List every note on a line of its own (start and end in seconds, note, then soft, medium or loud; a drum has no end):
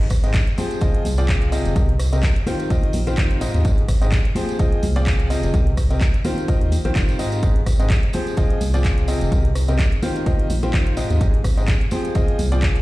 0.00 0.42 G#1 medium
0.00 1.20 C4 medium
0.10 kick medium
0.10 cross-stick medium
0.10 open hi-hat medium
0.10 tambourine medium
0.15 1.76 G#4 medium
0.24 0.36 G#2 medium
0.24 0.36 C4 medium
0.24 0.36 G4 medium
0.24 0.36 G#4 medium
0.24 0.36 D#5 medium
0.24 closed hi-hat soft
0.24 tambourine soft
0.33 kick loud
0.33 clap loud
0.33 closed hi-hat medium
0.33 tambourine medium
0.47 closed hi-hat soft
0.58 0.78 F3 medium
0.58 0.78 C4 medium
0.58 0.78 G4 medium
0.58 0.78 G#4 medium
0.58 0.78 C5 loud
0.58 open hi-hat medium
0.58 tambourine medium
0.58 high conga medium
0.71 closed hi-hat soft
0.71 tambourine soft
0.81 0.91 F1 medium
0.81 1.04 F3 loud
0.81 1.03 C4 medium
0.81 2.05 D#4 medium
0.81 1.04 F4 medium
0.81 1.04 G#4 medium
0.81 1.04 D#5 loud
0.81 kick loud
0.81 closed hi-hat medium
0.81 tambourine medium
0.94 closed hi-hat soft
1.05 1.60 C2 loud
1.05 open hi-hat loud
1.05 tambourine loud
1.05 high conga medium
1.17 1.50 F3 medium
1.17 1.50 C4 medium
1.17 1.50 F4 medium
1.17 1.50 G#4 medium
1.17 1.50 D5 loud
1.17 closed hi-hat soft
1.17 tambourine soft
1.29 kick loud
1.29 clap loud
1.29 closed hi-hat medium
1.29 tambourine medium
1.42 closed hi-hat soft
1.52 1.73 C3 medium
1.52 1.73 C4 medium
1.52 1.73 F4 medium
1.52 1.73 G#4 medium
1.52 1.73 D#5 loud
1.52 open hi-hat medium
1.52 tambourine medium
1.65 1.73 F1 loud
1.65 closed hi-hat soft
1.65 tambourine soft
1.76 2.30 C2 medium
1.76 1.91 C3 medium
1.76 1.91 C4 medium
1.76 4.98 C4 medium
1.76 1.91 G4 medium
1.76 1.91 A#4 medium
1.76 1.91 D#5 medium
1.76 kick loud
1.76 closed hi-hat medium
1.76 tambourine medium
1.89 closed hi-hat soft
1.99 cross-stick medium
1.99 open hi-hat loud
1.99 tambourine medium
2.13 2.25 C3 medium
2.13 2.25 C4 medium
2.13 2.25 G4 medium
2.13 2.25 A#4 medium
2.13 2.25 D#5 medium
2.13 closed hi-hat soft
2.13 tambourine soft
2.23 kick loud
2.23 clap loud
2.23 closed hi-hat medium
2.23 tambourine medium
2.36 closed hi-hat soft
2.47 2.67 D#3 medium
2.47 2.67 C4 medium
2.47 2.67 F4 medium
2.47 2.67 G4 medium
2.47 2.67 C5 medium
2.47 open hi-hat medium
2.47 tambourine medium
2.47 high conga medium
2.59 closed hi-hat soft
2.59 tambourine soft
2.70 2.80 D#2 medium
2.70 2.92 D#3 medium
2.70 2.92 C4 medium
2.70 2.92 F4 medium
2.70 2.92 G4 medium
2.70 2.92 D#5 loud
2.70 kick loud
2.70 closed hi-hat medium
2.70 tambourine soft
2.83 closed hi-hat soft
2.93 3.49 A#1 loud
2.93 open hi-hat loud
2.93 tambourine loud
2.93 high conga medium
3.07 3.39 D#3 medium
3.07 3.39 C4 medium
3.07 3.39 F4 medium
3.07 3.39 G4 medium
3.07 3.39 C5 loud
3.07 closed hi-hat soft
3.07 tambourine soft
3.17 kick loud
3.17 clap loud
3.17 closed hi-hat medium
3.17 tambourine soft
3.31 closed hi-hat soft
3.41 3.62 G#2 medium
3.41 3.62 C4 medium
3.41 3.62 F4 medium
3.41 3.62 G4 medium
3.41 3.62 D#5 loud
3.41 open hi-hat medium
3.41 tambourine medium
3.54 3.62 D#2 loud
3.54 closed hi-hat soft
3.54 tambourine soft
3.65 4.19 G#1 loud
3.65 3.80 G#2 medium
3.65 3.80 C4 medium
3.65 3.80 G4 medium
3.65 3.80 G#4 medium
3.65 3.80 D#5 medium
3.65 kick loud
3.65 closed hi-hat medium
3.65 tambourine medium
3.78 closed hi-hat soft
3.88 kick medium
3.88 cross-stick medium
3.88 open hi-hat loud
3.88 tambourine loud
4.01 4.14 G#2 medium
4.01 4.14 C4 medium
4.01 4.14 G4 medium
4.01 4.14 G#4 medium
4.01 4.14 D#5 medium
4.01 closed hi-hat soft
4.01 tambourine soft
4.08 5.54 G#4 medium
4.12 kick loud
4.12 clap loud
4.12 closed hi-hat medium
4.12 tambourine medium
4.25 closed hi-hat soft
4.35 4.56 F3 medium
4.35 4.56 C4 medium
4.35 4.56 G4 medium
4.35 4.56 G#4 medium
4.35 4.56 C5 loud
4.35 open hi-hat medium
4.35 tambourine medium
4.35 high conga medium
4.49 closed hi-hat soft
4.49 tambourine soft
4.59 4.69 F1 medium
4.59 4.81 F3 medium
4.59 4.81 C4 medium
4.59 5.83 D#4 medium
4.59 4.81 F4 medium
4.59 4.81 G#4 medium
4.59 4.81 D#5 loud
4.59 kick loud
4.59 closed hi-hat medium
4.59 tambourine medium
4.72 closed hi-hat soft
4.83 5.38 C2 loud
4.83 open hi-hat loud
4.83 tambourine medium
4.83 high conga medium
4.96 5.28 F3 loud
4.96 5.28 C4 medium
4.96 5.28 F4 medium
4.96 5.28 G#4 medium
4.96 5.28 D5 loud
4.96 closed hi-hat soft
4.96 tambourine soft
5.07 kick loud
5.07 clap loud
5.07 closed hi-hat medium
5.07 tambourine medium
5.20 closed hi-hat soft
5.30 5.51 C3 medium
5.30 5.51 C4 medium
5.30 5.51 F4 medium
5.30 5.51 G#4 medium
5.30 5.51 D#5 loud
5.30 open hi-hat medium
5.30 tambourine loud
5.43 5.51 F1 loud
5.43 closed hi-hat soft
5.43 tambourine soft
5.54 6.08 C2 medium
5.54 5.69 C3 medium
5.54 5.69 C4 medium
5.54 8.76 C4 medium
5.54 5.69 G4 medium
5.54 5.69 A#4 medium
5.54 5.69 D#5 medium
5.54 kick loud
5.54 closed hi-hat medium
5.54 tambourine medium
5.67 closed hi-hat soft
5.77 kick medium
5.77 cross-stick medium
5.77 open hi-hat loud
5.77 tambourine medium
5.90 6.03 C3 medium
5.90 6.03 C4 medium
5.90 6.03 G4 medium
5.90 6.03 A#4 medium
5.90 6.03 D#5 medium
5.90 closed hi-hat soft
5.90 tambourine soft
6.01 kick loud
6.01 clap loud
6.01 closed hi-hat medium
6.01 tambourine medium
6.14 closed hi-hat soft
6.24 6.45 D#3 medium
6.24 6.45 C4 medium
6.24 6.45 F4 medium
6.24 6.45 G4 medium
6.24 6.45 C5 medium
6.24 open hi-hat medium
6.24 tambourine loud
6.24 high conga medium
6.38 closed hi-hat soft
6.38 tambourine soft
6.48 6.70 D#3 medium
6.48 6.70 C4 medium
6.48 6.70 F4 medium
6.48 6.70 G4 medium
6.48 6.70 D#5 loud
6.48 kick loud
6.48 closed hi-hat medium
6.48 tambourine medium
6.61 6.78 D#2 medium
6.61 closed hi-hat soft
6.72 open hi-hat loud
6.72 tambourine medium
6.72 high conga medium
6.84 6.93 A#1 medium
6.84 7.17 D#3 medium
6.84 7.17 C4 medium
6.84 7.17 F4 medium
6.84 7.17 G4 medium
6.84 7.17 C5 loud
6.84 closed hi-hat soft
6.84 tambourine soft
6.96 7.05 D#1 loud
6.96 kick loud
6.96 clap loud
6.96 closed hi-hat medium
6.96 tambourine soft
7.09 closed hi-hat soft
7.09 tambourine soft
7.19 7.40 G#2 medium
7.19 7.40 C4 medium
7.19 7.40 F4 medium
7.19 7.40 G4 medium
7.19 7.40 D#5 medium
7.19 open hi-hat medium
7.19 tambourine loud
7.32 closed hi-hat soft
7.32 tambourine soft
7.43 7.97 G#1 medium
7.43 7.58 G#2 medium
7.43 7.58 C4 medium
7.43 7.58 G4 medium
7.43 7.58 G#4 medium
7.43 7.58 D#5 medium
7.43 kick loud
7.43 closed hi-hat medium
7.43 tambourine medium
7.51 9.32 G#4 medium
7.56 closed hi-hat soft
7.66 kick medium
7.66 cross-stick medium
7.66 open hi-hat loud
7.66 tambourine medium
7.79 7.92 G#2 medium
7.79 7.92 C4 medium
7.79 7.92 G4 medium
7.79 7.92 G#4 medium
7.79 7.92 D#5 medium
7.79 closed hi-hat soft
7.79 tambourine soft
7.90 kick loud
7.90 clap loud
7.90 closed hi-hat medium
7.90 tambourine soft
8.03 closed hi-hat soft
8.13 8.34 F3 medium
8.13 8.34 C4 medium
8.13 8.34 G4 medium
8.13 8.34 G#4 medium
8.13 8.34 C5 medium
8.13 open hi-hat medium
8.13 tambourine medium
8.13 high conga medium
8.27 closed hi-hat soft
8.27 tambourine soft
8.37 8.47 F1 medium
8.37 8.59 F3 loud
8.37 8.59 C4 medium
8.37 9.61 D#4 medium
8.37 8.59 F4 medium
8.37 8.59 G#4 medium
8.37 8.59 D#5 loud
8.37 kick loud
8.37 closed hi-hat medium
8.37 tambourine soft
8.50 closed hi-hat soft
8.61 9.16 C2 loud
8.61 open hi-hat loud
8.61 tambourine loud
8.61 high conga medium
8.74 9.06 F3 loud
8.74 9.06 C4 medium
8.74 9.06 F4 medium
8.74 9.06 G#4 medium
8.74 9.06 D5 loud
8.74 closed hi-hat soft
8.74 tambourine soft
8.84 kick loud
8.84 clap loud
8.84 closed hi-hat medium
8.84 tambourine soft
8.98 closed hi-hat soft
9.08 9.29 C3 medium
9.08 9.29 C4 medium
9.08 9.29 F4 medium
9.08 9.29 G#4 medium
9.08 9.29 D#5 loud
9.08 open hi-hat medium
9.08 tambourine medium
9.21 9.29 F1 loud
9.21 closed hi-hat soft
9.21 tambourine soft
9.32 9.86 C2 medium
9.32 9.47 C3 medium
9.32 9.47 C4 medium
9.32 12.54 C4 medium
9.32 9.47 G4 medium
9.32 9.47 A#4 medium
9.32 9.47 D#5 medium
9.32 kick loud
9.32 closed hi-hat medium
9.32 tambourine soft
9.45 closed hi-hat soft
9.55 cross-stick medium
9.55 open hi-hat loud
9.55 tambourine medium
9.68 9.81 C3 medium
9.68 9.81 C4 medium
9.68 9.81 G4 medium
9.68 9.81 A#4 medium
9.68 9.81 D#5 medium
9.68 closed hi-hat soft
9.68 tambourine soft
9.79 kick loud
9.79 clap loud
9.79 closed hi-hat medium
9.79 tambourine soft
9.92 closed hi-hat soft
10.02 10.23 D#3 medium
10.02 10.23 C4 medium
10.02 10.23 F4 medium
10.02 10.23 G4 medium
10.02 10.23 C5 loud
10.02 open hi-hat medium
10.02 tambourine medium
10.02 high conga medium
10.16 closed hi-hat soft
10.16 tambourine soft
10.26 10.36 D#2 medium
10.26 10.48 D#3 medium
10.26 10.48 C4 medium
10.26 10.48 F4 medium
10.26 10.48 G4 medium
10.26 10.48 D#5 loud
10.26 kick loud
10.26 closed hi-hat medium
10.26 tambourine soft
10.39 closed hi-hat soft
10.50 11.05 A#1 loud
10.50 open hi-hat loud
10.50 tambourine medium
10.50 high conga medium
10.63 10.95 D#3 medium
10.63 10.95 C4 medium
10.63 10.95 F4 medium
10.63 10.95 G4 medium
10.63 10.95 C5 loud
10.63 closed hi-hat soft
10.63 tambourine soft
10.73 kick loud
10.73 clap loud
10.73 closed hi-hat medium
10.73 tambourine soft
10.87 closed hi-hat soft
10.97 11.18 G#2 medium
10.97 11.18 C4 medium
10.97 11.18 F4 medium
10.97 11.18 G4 medium
10.97 11.18 D#5 loud
10.97 open hi-hat medium
10.97 tambourine medium
11.10 11.18 D#2 loud
11.10 closed hi-hat soft
11.10 tambourine soft
11.21 11.75 G#1 medium
11.21 11.36 G#2 medium
11.21 11.36 C4 medium
11.21 11.36 G4 medium
11.21 11.36 G#4 medium
11.21 11.36 D#5 medium
11.21 kick loud
11.21 closed hi-hat medium
11.21 tambourine soft
11.34 closed hi-hat soft
11.44 kick medium
11.44 cross-stick medium
11.44 open hi-hat medium
11.44 tambourine medium
11.57 11.70 G#2 medium
11.57 11.70 C4 medium
11.57 11.70 G4 medium
11.57 11.70 G#4 medium
11.57 11.70 D#5 medium
11.57 closed hi-hat soft
11.57 tambourine soft
11.64 12.82 G#4 medium
11.68 kick loud
11.68 clap loud
11.68 closed hi-hat medium
11.68 tambourine soft
11.81 closed hi-hat soft
11.91 12.12 F3 medium
11.91 12.12 C4 medium
11.91 12.12 G4 medium
11.91 12.12 G#4 medium
11.91 12.12 C5 loud
11.91 open hi-hat medium
11.91 tambourine medium
11.91 high conga medium
12.05 closed hi-hat soft
12.05 tambourine soft
12.15 12.25 F1 medium
12.15 12.37 F3 loud
12.15 12.37 C4 medium
12.15 12.82 D#4 medium
12.15 12.37 F4 medium
12.15 12.37 G#4 medium
12.15 12.37 D#5 loud
12.15 kick loud
12.15 closed hi-hat medium
12.15 tambourine soft
12.28 closed hi-hat soft
12.39 12.82 C2 loud
12.39 open hi-hat loud
12.39 tambourine medium
12.39 high conga medium
12.52 12.82 F3 medium
12.52 12.82 C4 medium
12.52 12.82 F4 medium
12.52 12.82 G#4 medium
12.52 12.82 D5 loud
12.52 closed hi-hat soft
12.52 tambourine soft
12.62 kick loud
12.62 clap loud
12.62 closed hi-hat medium
12.62 tambourine soft
12.76 closed hi-hat soft